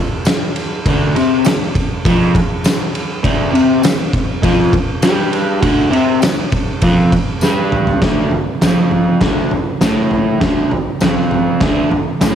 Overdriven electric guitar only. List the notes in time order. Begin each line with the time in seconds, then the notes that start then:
0.87 D2 D3
1.16 C3 C4
1.46 D2
2.06 F2 F3
3.23 D2 D3
3.52 C3 C4
3.83 D2
4.43 F2 F3
5.03 G2 G3
5.62 D2 D3
5.92 C3 C4
6.22 D2
6.83 F2 F3
7.42 G2 G3
8.02 D2 D3
8.34 D2
8.63 F2 F3
9.23 D2 D3
9.54 muted overdriven electric guitar stroke
9.82 A2 A3
10.41 D2 D3
10.71 D2
11.02 F2 F3
11.62 D2 D3
11.91 muted overdriven electric guitar stroke
12.23 A2 A3